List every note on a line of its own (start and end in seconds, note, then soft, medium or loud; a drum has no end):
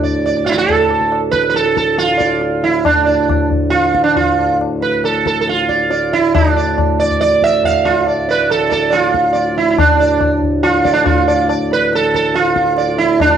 0.00 2.84 D2 medium
0.00 2.83 A2 medium
0.00 0.23 D5 soft
0.00 tabla ge medium
0.26 0.45 D5 soft
0.26 tabla te medium
0.37 tabla te medium
0.46 0.52 E4 medium
0.46 0.49 F4 medium
0.46 tabla ke medium
0.52 0.57 F4 medium
0.58 1.19 A4 medium
0.58 tabla te soft
0.69 tabla tin medium
0.69 tabla ge medium
0.91 tabla na medium
1.01 tabla ke medium
1.12 tabla na medium
1.32 1.48 B4 medium
1.32 tabla ke medium
1.43 tabla te medium
1.50 1.55 B4 medium
1.54 1.76 A4 medium
1.54 tabla te medium
1.66 tabla te medium
1.77 1.98 A4 medium
1.77 tabla ke medium
1.88 tabla te medium
1.98 2.66 F4 medium
1.98 tabla te medium
2.09 tabla te medium
2.18 2.39 D5 soft
2.18 tabla ke medium
2.30 tabla te medium
2.41 tabla te medium
2.63 2.84 E4 medium
2.63 tabla te soft
2.85 9.77 D2 medium
2.85 9.77 A2 medium
2.85 3.47 D4 medium
2.85 tabla na loud
2.85 tabla ge medium
3.06 3.27 D5 soft
3.06 tabla te medium
3.29 tabla na medium
3.29 tabla ge medium
3.51 tabla ge soft
3.70 4.03 F4 loud
3.70 tabla te medium
3.84 tabla te medium
3.95 tabla ke medium
4.04 4.16 D4 medium
4.04 tabla te medium
4.16 4.57 F4 medium
4.16 tabla tin medium
4.16 tabla ge medium
4.39 tabla na medium
4.61 tabla na medium
4.82 5.04 B4 medium
4.82 tabla te medium
5.04 5.26 A4 medium
5.04 tabla na medium
5.26 5.40 A4 medium
5.26 tabla ke medium
5.41 5.47 A4 medium
5.48 6.15 F4 medium
5.48 tabla te medium
5.58 tabla te medium
5.69 5.89 D5 soft
5.69 tabla ke soft
5.80 tabla te medium
5.91 6.10 D5 soft
5.91 tabla te medium
6.13 6.34 E4 medium
6.13 tabla te medium
6.34 7.00 D4 medium
6.34 tabla na loud
6.34 tabla ge medium
6.56 6.76 D5 soft
6.56 tabla te medium
6.78 tabla na medium
6.78 tabla ge medium
7.00 7.20 D5 medium
7.00 tabla te medium
7.11 tabla ge soft
7.21 7.42 D5 medium
7.21 tabla te medium
7.32 tabla te medium
7.42 7.65 E5 medium
7.42 tabla ke medium
7.53 tabla te soft
7.63 7.86 F5 medium
7.63 tabla tin medium
7.63 tabla ge medium
7.85 8.05 F4 medium
7.85 tabla na medium
8.07 8.27 D5 soft
8.07 tabla na medium
8.29 8.49 B4 medium
8.29 8.48 D5 soft
8.29 tabla te medium
8.50 8.71 A4 medium
8.50 tabla na medium
8.69 8.93 A4 medium
8.69 8.89 D5 soft
8.69 tabla ke medium
8.90 9.57 F4 medium
8.90 9.11 D5 soft
8.90 tabla te medium
9.04 tabla te medium
9.14 tabla ke medium
9.25 tabla te medium
9.33 9.54 D5 soft
9.33 tabla te medium
9.56 9.69 E4 medium
9.56 tabla te medium
9.70 9.78 E4 soft
9.78 13.37 D2 medium
9.78 13.37 A2 medium
9.78 10.39 D4 medium
9.78 tabla na medium
9.78 tabla ge medium
9.99 10.20 D5 soft
9.99 tabla te medium
10.21 tabla na medium
10.21 tabla ge medium
10.42 tabla ge medium
10.63 10.93 F4 medium
10.63 tabla na medium
10.85 11.05 D5 soft
10.85 tabla ke medium
10.93 11.05 D4 medium
11.06 11.46 F4 medium
11.06 tabla tin medium
11.06 tabla ge medium
11.28 11.48 D5 soft
11.28 tabla na medium
11.49 11.69 D5 soft
11.49 tabla na medium
11.71 11.94 B4 medium
11.71 tabla te medium
11.93 12.14 A4 medium
11.93 tabla te medium
12.04 tabla te medium
12.14 12.37 A4 medium
12.14 tabla ke medium
12.24 tabla te medium
12.34 12.98 F4 medium
12.34 tabla te medium
12.46 tabla te medium
12.56 tabla ke medium
12.66 tabla te medium
12.77 12.98 D5 soft
12.77 tabla te medium
12.98 13.21 E4 medium
12.98 tabla te medium
13.20 13.37 D4 medium
13.20 tabla na medium
13.20 tabla ge medium